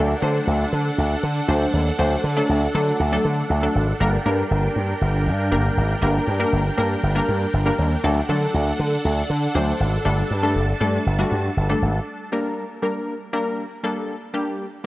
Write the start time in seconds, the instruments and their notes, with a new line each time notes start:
Already playing: slap bass D2, analog polysynth F#3 A3 D4 A4, supersaw synth D4 A4 F#5
0.22 slap bass D3, analog polysynth F#3 A3 D4 C5
0.47 slap bass D2
0.73 slap bass D3
0.98 slap bass D2
1.23 slap bass D3
1.48 slap bass D2, analog polysynth F#3 A3 D4 C5
1.73 slap bass D#2
1.98 slap bass D2, analog polysynth F#3 A3 D4 C5
2.24 slap bass D3
2.36 analog polysynth F#3 A3 D4 A4
2.49 slap bass D2
2.74 slap bass D3, analog polysynth F#3 A3 D4 A4
3.00 slap bass D2
3.12 analog polysynth F#3 A3 D4 A4
3.25 slap bass D3
3.50 slap bass D2
3.63 analog polysynth F#3 A3 D4 A4
3.75 slap bass G#1
4.00 slap bass G1, analog polysynth G3 A#3 D4 A#4, supersaw synth A#4 G5
4.26 slap bass G2, analog polysynth G3 A#3 D4 A#4
4.51 slap bass G1
4.76 slap bass G2
5.01 slap bass G1
5.27 slap bass G2
5.52 slap bass G1, analog polysynth G3 A#3 D4 A#4
5.77 slap bass G#1
6.02 slap bass G1, analog polysynth G3 A#3 D4 A#4
6.27 slap bass G2
6.40 analog polysynth G3 A#3 D4 A#4
6.53 slap bass G1
6.77 slap bass G2, analog polysynth G3 A#3 D4 A#4
7.03 slap bass G1
7.15 analog polysynth G3 A#3 D4 A#4
7.28 slap bass G2
7.53 slap bass G1
7.66 analog polysynth G3 A#3 D4 A#4
7.79 slap bass D#2
8.04 slap bass D2, analog polysynth F#3 A3 D4 A4, supersaw synth D4 A4 F#5
8.29 slap bass D3, analog polysynth F#3 A3 D4 A4
8.54 slap bass D2
8.79 slap bass D3
9.05 slap bass D2
9.30 slap bass D3
9.55 slap bass D2, analog polysynth F#3 A3 D4 C5
9.80 slap bass G#1
10.05 slap bass G1, analog polysynth G3 A3 D4 A4, supersaw synth A5
10.31 slap bass G2
10.43 analog polysynth G3 A3 D4 A4
10.56 slap bass G1
10.81 slap bass G2, analog polysynth G3 A3 D4 A4
11.06 slap bass G1
11.19 analog polysynth G3 A3 D4 F#4
11.32 slap bass G2
11.57 slap bass G1
11.69 analog polysynth G3 A3 D4 A4
11.82 slap bass G#1
12.32 analog polysynth G3 A#3 D4 A#4
12.82 analog polysynth G3 A#3 D4 A#4
13.33 analog polysynth G3 A#3 D4 A#4
13.83 analog polysynth G3 A#3 D4 A4
14.34 analog polysynth G3 A#3 D4 G4